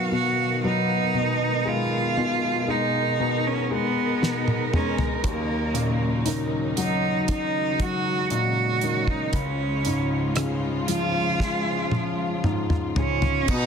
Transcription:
Already playing: grand piano B2 F#3, steel-string acoustic guitar B2 B3 F#4 B4, string section B2 D#3 F#3 F5, cello F#4
0.12 grand piano B2, steel-string acoustic guitar F#4, cello F#4
0.63 grand piano F#3, steel-string acoustic guitar B3 F#4 B4, cello D#4
1.14 steel-string acoustic guitar B2, grand piano B2, string section G#3 D#4
1.65 grand piano G#3, steel-string acoustic guitar B3, cello F4
2.17 grand piano B2, steel-string acoustic guitar B3 D#4 G#4
2.68 grand piano G#3, steel-string acoustic guitar D#4, cello D#4
3.19 grand piano B2, steel-string acoustic guitar B3, string section A#4
3.47 cello C#4
3.71 grand piano G#3, cello B3
4.22 grand piano B2, steel-string acoustic guitar D#4, snare
4.48 high tom
4.73 grand piano G#3, steel-string acoustic guitar B3 D#4 G#4, cello C#4, mid tom
4.98 floor tom
5.24 grand piano D#2, string section C#3 F#3, steel-string acoustic guitar D#3, cello A#3, kick, closed hi-hat
5.74 grand piano A#2, steel-string acoustic guitar C#4, closed hi-hat
6.25 grand piano D#3, steel-string acoustic guitar C#4 D#4 A#4, closed hi-hat
6.77 grand piano F#3, steel-string acoustic guitar D#4, cello D#4, closed hi-hat
7.28 grand piano D#3, string section G#3, steel-string acoustic guitar C#4, cello D#4, kick, closed hi-hat
7.80 grand piano F#3, cello F#4, kick, closed hi-hat
8.30 grand piano A#2, steel-string acoustic guitar D#4, cello F#4, closed hi-hat
8.81 grand piano D#3, steel-string acoustic guitar C#4 D#4 A#4, closed hi-hat
9.07 cello D#4, kick
9.33 grand piano C#2, steel-string acoustic guitar C#3, string section F3 F4, cello C#4, kick, closed hi-hat
9.85 grand piano G#2, steel-string acoustic guitar C#4, closed hi-hat
10.36 grand piano C#3, steel-string acoustic guitar C#4 F4 G#4, cross-stick, closed hi-hat
10.88 grand piano F3, steel-string acoustic guitar F4, cello F4, closed hi-hat
11.40 grand piano G#3, steel-string acoustic guitar C#4, kick, snare
11.91 grand piano F3, high tom
12.44 grand piano G#2, steel-string acoustic guitar F4, mid tom
12.70 mid tom
12.96 grand piano C#3, steel-string acoustic guitar C#4 F4 G#4, cello C#4, floor tom
13.22 floor tom
13.47 bass clarinet B2, steel-string acoustic guitar B2, grand piano B2, french horn section B3, cello D#4, string section B4 D#5 D#6, kick, crash, tambourine

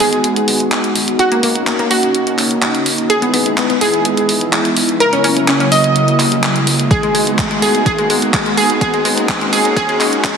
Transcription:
Already playing: analog synth pad G#3 B3 D#4 F#4, riser
0.00 analog synth bass G#1, synth pluck G#4, open hi-hat
0.13 closed hi-hat
0.24 closed hi-hat
0.36 closed hi-hat
0.48 analog synth bass G#1, open hi-hat
0.60 closed hi-hat
0.72 clap, closed hi-hat
0.84 closed hi-hat
0.96 analog synth bass G#1, open hi-hat
1.08 closed hi-hat
1.19 analog synth pad A#3 C#4, synth pluck F#4, closed hi-hat
1.32 synth pluck A#3, closed hi-hat
1.43 analog synth bass D#1, synth pluck A#3, open hi-hat
1.55 closed hi-hat
1.67 synth pluck A#3, clap, closed hi-hat
1.79 synth pluck A#3, closed hi-hat
1.91 analog synth bass D#1, synth pluck F#4, open hi-hat
2.03 closed hi-hat
2.15 closed hi-hat
2.27 closed hi-hat
2.38 analog synth bass D#1, clap, open hi-hat
2.51 closed hi-hat
2.62 clap, closed hi-hat
2.75 closed hi-hat
2.86 analog synth bass D#1, open hi-hat
2.98 closed hi-hat
3.10 analog synth pad G#3 B3 E4, synth pluck G#4, closed hi-hat
3.22 synth pluck B3, closed hi-hat
3.34 analog synth bass E1, synth pluck B3, open hi-hat
3.46 closed hi-hat
3.57 synth pluck B3, clap, closed hi-hat
3.70 synth pluck B3, closed hi-hat
3.81 analog synth bass E1, synth pluck G#4, open hi-hat
3.94 closed hi-hat
4.05 closed hi-hat
4.17 closed hi-hat
4.29 analog synth bass E1, open hi-hat
4.41 closed hi-hat
4.53 clap, closed hi-hat
4.65 closed hi-hat
4.77 analog synth bass E1, open hi-hat
4.89 closed hi-hat
5.00 analog synth pad C#3 F#3 A#3, synth pluck A#4, closed hi-hat
5.13 synth pluck C#4, closed hi-hat
5.24 analog synth bass F#1, synth pluck C#4, open hi-hat
5.37 closed hi-hat
5.48 synth pluck C#4, clap, closed hi-hat
5.60 synth pluck C#4, closed hi-hat
5.72 synth pluck D#5, open hi-hat
5.84 closed hi-hat
5.96 closed hi-hat
6.08 closed hi-hat
6.20 clap, open hi-hat
6.32 closed hi-hat
6.43 clap, closed hi-hat
6.56 closed hi-hat
6.67 analog synth bass C#2, open hi-hat
6.79 closed hi-hat
6.91 analog synth pad G#3 B3 D#4 F#4, synth pluck G#4, kick, closed hi-hat
7.03 synth pluck G#3, closed hi-hat
7.15 analog synth bass G#1, synth pluck G#3, open hi-hat
7.27 closed hi-hat
7.38 synth pluck G#3, kick, clap, closed hi-hat
7.51 synth pluck G#3, closed hi-hat
7.62 analog synth bass G#1, synth pluck G#4, open hi-hat
7.75 closed hi-hat
7.86 synth pluck G#4, kick, closed hi-hat
7.98 synth pluck G#3, closed hi-hat
8.10 analog synth bass G#1, synth pluck G#3, open hi-hat
8.22 closed hi-hat
8.34 synth pluck G#3, kick, clap, closed hi-hat
8.46 synth pluck G#3, closed hi-hat
8.57 analog synth bass G#1, synth pluck G#4, open hi-hat
8.70 closed hi-hat
8.81 analog synth pad A#3 C#4 F#4, synth pluck G#4, kick, closed hi-hat
8.94 synth pluck G#3, closed hi-hat
9.05 synth pluck G#3, open hi-hat
9.18 closed hi-hat
9.29 synth pluck G#3, kick, clap, closed hi-hat
9.41 synth pluck G#3, closed hi-hat
9.53 synth pluck G#4, open hi-hat
9.65 closed hi-hat
9.76 synth pluck G#4, kick, closed hi-hat
9.89 synth pluck G#3, closed hi-hat
10.00 synth pluck G#3, clap, open hi-hat
10.13 closed hi-hat
10.24 synth pluck G#3, kick, clap, closed hi-hat

